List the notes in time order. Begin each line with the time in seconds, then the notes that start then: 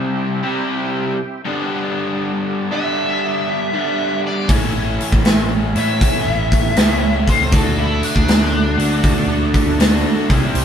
Already playing: C3 G3 C4 E4 G4
0.43 C3 G3 C4 E4
1.44 G2 D3 G3 B3 C4 D4 D#4 G#4
1.69 B3 D4 G4
2.71 G2 D3 G3 B3 D4 E5
3.73 G2 D3 G3 B3 D4
4.27 D5
4.48 A1 A2 E3 A3 C#4 E4 A4, kick, open hi-hat
5.00 open hi-hat
5.12 A1, kick
5.25 snare, open hi-hat
5.75 A2 E3 A3 C#4 E4 E5, open hi-hat
6.01 kick, open hi-hat
6.27 A1
6.52 kick, open hi-hat
6.76 C#2 A2 E3 A3 C#4 E4, snare, open hi-hat
7.27 C5, kick, open hi-hat
7.40 C#2
7.52 D2 D3 A3 D4 F#4 A4, kick, open hi-hat
7.78 E4
8.03 D4, open hi-hat
8.16 D2, kick
8.28 snare, open hi-hat
8.78 D2 D3 A3 D4 F#4, open hi-hat
9.04 kick, open hi-hat
9.29 D2
9.54 kick, open hi-hat
9.67 D2
9.79 D3 A3 D4 F#4, snare, open hi-hat
10.28 C2 C3 G3 C4 C#4 E4 F4 G#4, kick, open hi-hat
10.46 C4 E4 G4
10.55 C2, open hi-hat